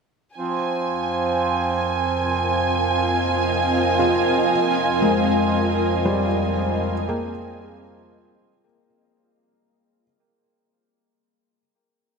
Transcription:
0.35 F2 F3 C4 G#5
0.48 A#4
0.65 F4
1.63 D#5
1.76 F5
3.99 F4
4.51 F2
5.02 G#3 A#4
6.05 G3 C5
7.09 A#3 G#4 G5

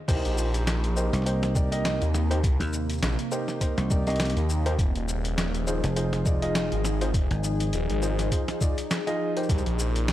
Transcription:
0.08 C2 C3 A#3 D#4 G4 A#4 C5, kick, closed hi-hat, crash, shaker
0.25 A#1, closed hi-hat, shaker
0.38 shaker
0.54 closed hi-hat, shaker
0.67 snare, closed hi-hat, shaker
0.84 closed hi-hat, shaker
0.96 D#4 G4 A#4 C5, shaker
1.13 C2, snare, closed hi-hat, shaker
1.16 snare
1.22 D#4 G4 A#4 C5, snare
1.26 closed hi-hat, shaker
1.43 snare, closed hi-hat, shaker
1.55 D#4 G4 A#4 D5, kick, shaker
1.72 D#4 G4 A#4 D#5, closed hi-hat, shaker
1.85 snare, closed hi-hat, shaker
2.02 D#2, closed hi-hat, shaker
2.15 snare, shaker
2.31 D#4 G4 A#4 C5, closed hi-hat, shaker
2.44 C2, kick, closed hi-hat, shaker
2.60 D#2, closed hi-hat, shaker
2.63 shaker
2.67 shaker
2.69 shaker
2.71 shaker
2.73 shaker
2.90 closed hi-hat, shaker
2.93 shaker
2.98 shaker
3.02 A#1, snare, closed hi-hat, shaker
3.12 shaker
3.19 closed hi-hat, shaker
3.32 D#4 G4 A#4 C5, shaker
3.48 snare, shaker
3.61 D#4 G4 A#4 C5, kick, closed hi-hat, shaker
3.78 C2, snare, closed hi-hat, shaker
3.90 D#4 G4 A#4 D5, kick, shaker
4.07 C2 D#4 G4 A#4 D#5, closed hi-hat, shaker
4.10 closed hi-hat
4.16 snare, closed hi-hat
4.20 closed hi-hat, shaker
4.25 closed hi-hat
4.30 closed hi-hat
4.36 D#2, closed hi-hat, shaker
4.49 shaker
4.66 D#4 G4 A#4 C5, closed hi-hat
4.79 F1 F3 G#4, kick, closed hi-hat, shaker
4.95 D#1, closed hi-hat, shaker
5.08 shaker
5.25 closed hi-hat, shaker
5.38 snare, closed hi-hat, shaker
5.54 closed hi-hat, shaker
5.67 D#4 F4 G#4 C5, shaker
5.84 F1, snare, closed hi-hat, shaker
5.96 D#4 F4 G#4 C5, closed hi-hat, shaker
6.13 snare, closed hi-hat, shaker
6.26 D#4 F4 G#4 D5, kick, shaker
6.42 D#4 F4 G#4 D#5, closed hi-hat
6.55 snare, closed hi-hat, shaker
6.72 G#1, closed hi-hat
6.85 snare, shaker
7.01 D#4 F4 G#4 C5, closed hi-hat, shaker
7.14 F1, kick, closed hi-hat, shaker
7.31 G#1, closed hi-hat
7.44 shaker
7.60 closed hi-hat, shaker
7.73 D#1, closed hi-hat, shaker
7.90 G#1, closed hi-hat
8.02 D#4 F4 G#4 C5, shaker
8.19 snare, closed hi-hat, shaker
8.32 D#4 F4 G#4 C5, kick, closed hi-hat, shaker
8.48 snare, closed hi-hat, shaker
8.61 D#4 F4 G#4 D5, kick, shaker
8.78 closed hi-hat, shaker
8.91 snare, closed hi-hat, shaker
9.07 D#4 F4 G#4 D#5, closed hi-hat, shaker
9.37 D#4 G4 A#4 C5, closed hi-hat, shaker
9.43 shaker
9.49 C2 C3 A#3, kick, closed hi-hat, shaker
9.58 shaker
9.66 A#1, closed hi-hat
9.79 shaker
9.96 closed hi-hat, shaker
10.08 snare, closed hi-hat, shaker

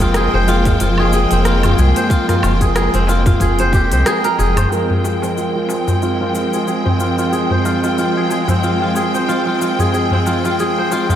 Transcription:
Already playing: F1 F3 G#3 A#3 C4 G#4 A#4 G5
0.00 F4, kick, open hi-hat, darbuka ka, darbuka tek, cabasa
0.14 G#4, cross-stick, open hi-hat, cabasa
0.33 F1 C5
0.48 F4, darbuka ka, darbuka tek, cabasa
0.65 F4, kick, open hi-hat, darbuka dum, cabasa
0.80 F1 F4, open hi-hat, cabasa
0.98 G#4, low woodblock
1.13 G#4, cabasa
1.31 F1 C4, open hi-hat, cabasa
1.45 F4, cross-stick, open hi-hat, cabasa
1.63 F4, open hi-hat, darbuka dum, low woodblock
1.78 C2 G#4, cabasa
1.96 C5, open hi-hat, cabasa
2.10 F4, kick, open hi-hat, cabasa
2.29 F4, cross-stick, open hi-hat, darbuka dum
2.43 F1 F4, darbuka tek, cabasa, low woodblock
2.60 G#4, kick, open hi-hat, darbuka ka, darbuka tek, cabasa
2.76 G#4, cross-stick, open hi-hat, cabasa
2.93 F1 C4, open hi-hat
3.07 F4, darbuka ka, darbuka tek, cabasa
3.26 F4, kick, open hi-hat, darbuka dum, cabasa
3.40 F1 G#4, kick, open hi-hat, cabasa
3.59 C5, open hi-hat
3.73 G4, kick, darbuka ka, cabasa
3.91 C2 C5, open hi-hat, cabasa
4.06 G#4, cross-stick, open hi-hat, cabasa
4.24 A#4, open hi-hat
4.38 F1 G#4, darbuka ka, cabasa
4.56 C5, open hi-hat, darbuka dum, cabasa, low woodblock
4.71 F3 G#3 C4 F4 A#4 G5, cabasa
4.90 G#4, darbuka dum
5.04 G#4, darbuka tek, cabasa
5.22 C4, darbuka ka, darbuka tek, cabasa
5.37 F4, cabasa
5.55 F4
5.69 G#4, darbuka ka, darbuka tek, cabasa
5.87 C5, darbuka dum, cabasa
6.02 F4, cabasa
6.20 F4
6.35 F4, cabasa
6.53 G#4, cabasa
6.67 G#4, cabasa
6.85 C4, darbuka dum
7.00 F4, cabasa
7.18 F4, cabasa
7.32 G#4, cabasa
7.50 C5, darbuka dum
7.65 F4, darbuka tek, cabasa
7.83 F4, darbuka ka, darbuka tek, cabasa
7.98 F4, cabasa
8.17 G#4
8.30 G#4, darbuka ka, darbuka tek, cabasa
8.48 C4, darbuka dum, cabasa
8.63 F4, cabasa
8.82 F4
8.95 G#4, darbuka ka, cabasa
9.14 C5, cabasa
9.28 F4, cabasa
9.46 F4
9.60 F4, darbuka ka, cabasa
9.79 G#4, darbuka dum, cabasa
9.94 G#4, cabasa
10.11 C4, darbuka dum
10.26 F4, darbuka tek, cabasa
10.44 F4, darbuka ka, darbuka tek, cabasa
10.60 G#4, cabasa
10.78 C5
10.91 F4, darbuka ka, darbuka tek, cabasa
11.09 F4, darbuka dum, cabasa

